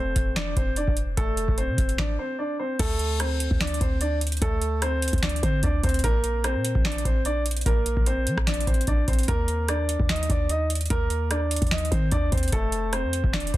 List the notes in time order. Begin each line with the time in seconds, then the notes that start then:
Already playing: F1 C4 C5
0.16 F1, kick, closed hi-hat
0.36 D4 D5, snare, closed hi-hat
0.56 F1 C4 C5, kick, closed hi-hat
0.76 D4 D5, closed hi-hat
0.88 F1, kick
0.97 closed hi-hat
1.17 F1 A3 A4, kick, closed hi-hat
1.37 closed hi-hat
1.48 F1, kick
1.58 C4 C5, closed hi-hat
1.69 C3
1.78 F1, kick, closed hi-hat
1.89 closed hi-hat
1.98 D4 D5, kick, snare
2.19 C4 C5
2.39 D4 D5
2.59 C4 C5
2.79 D2 A3 A4, kick, closed hi-hat, crash
2.99 closed hi-hat
3.20 C4 C5, cross-stick, closed hi-hat
3.40 closed hi-hat
3.51 D2, kick
3.61 D4 D5, snare, closed hi-hat
3.67 closed hi-hat
3.74 closed hi-hat
3.81 D2 C4 C5, kick, closed hi-hat
4.01 D4 D5, closed hi-hat
4.21 closed hi-hat
4.27 closed hi-hat
4.32 closed hi-hat
4.37 closed hi-hat
4.42 D2 A3 A4, kick, closed hi-hat
4.62 closed hi-hat
4.82 C4 C5, cross-stick, closed hi-hat
5.02 closed hi-hat
5.08 closed hi-hat
5.13 D2, kick, closed hi-hat
5.18 closed hi-hat
5.23 D4 D5, snare, closed hi-hat
5.29 closed hi-hat
5.36 closed hi-hat
5.43 D3 C4 C5, kick, closed hi-hat
5.63 D2 D4 D5, kick, closed hi-hat
5.83 D2 C4 C5, kick, closed hi-hat
5.89 closed hi-hat
5.94 closed hi-hat
5.99 closed hi-hat
6.04 A#1 A#3 A#4, kick, closed hi-hat
6.24 closed hi-hat
6.44 C4 C5, cross-stick, closed hi-hat
6.55 A#2
6.65 closed hi-hat
6.75 A#1, kick
6.85 D4 D5, snare, closed hi-hat
6.92 closed hi-hat
6.98 closed hi-hat
7.05 A#1 C4 C5, kick, closed hi-hat
7.25 D4 D5, closed hi-hat
7.46 closed hi-hat
7.51 closed hi-hat
7.56 closed hi-hat
7.61 closed hi-hat
7.66 A#1 A#3 A#4, kick, closed hi-hat
7.86 closed hi-hat
7.97 A#1, kick
8.06 C4 C5, closed hi-hat
8.27 F3, closed hi-hat
8.37 A#1, kick, cross-stick
8.47 D4 D5, snare, closed hi-hat
8.54 closed hi-hat
8.61 closed hi-hat
8.67 A#1 C4 C5, kick, closed hi-hat
8.74 closed hi-hat
8.81 closed hi-hat
8.87 A#1 D4 D5, kick, closed hi-hat
9.08 A#1 C4 C5, kick, closed hi-hat
9.13 closed hi-hat
9.19 closed hi-hat
9.23 closed hi-hat
9.28 D#2 A#3 A#4, kick, closed hi-hat
9.48 closed hi-hat
9.68 D4 D5, cross-stick, closed hi-hat
9.89 closed hi-hat
10.00 D#2, kick
10.09 D#4 D#5, snare, closed hi-hat
10.16 closed hi-hat
10.23 closed hi-hat
10.29 D#2 D4 D5, kick, closed hi-hat
10.49 D#4 D#5, closed hi-hat
10.70 closed hi-hat
10.75 closed hi-hat
10.81 closed hi-hat
10.86 closed hi-hat
10.90 D#2 A#3 A#4, kick, closed hi-hat
11.10 closed hi-hat
11.30 D4 D5, cross-stick, closed hi-hat
11.51 closed hi-hat
11.56 closed hi-hat
11.62 D#2, kick, closed hi-hat
11.67 closed hi-hat
11.71 D#4 D#5, snare, closed hi-hat
11.78 closed hi-hat
11.85 closed hi-hat
11.91 D#3 C4 C5, kick, closed hi-hat
12.11 D#2 D4 D5, kick, closed hi-hat
12.32 D#2 C4 C5, kick, closed hi-hat
12.38 closed hi-hat
12.43 closed hi-hat
12.48 closed hi-hat
12.52 F1 A3 A4, kick, closed hi-hat
12.72 closed hi-hat
12.93 C4 C5, cross-stick, closed hi-hat
13.04 F2
13.13 closed hi-hat
13.24 F1, kick
13.33 D4 D5, snare, closed hi-hat
13.40 closed hi-hat
13.47 closed hi-hat
13.54 F1 C5, kick, closed hi-hat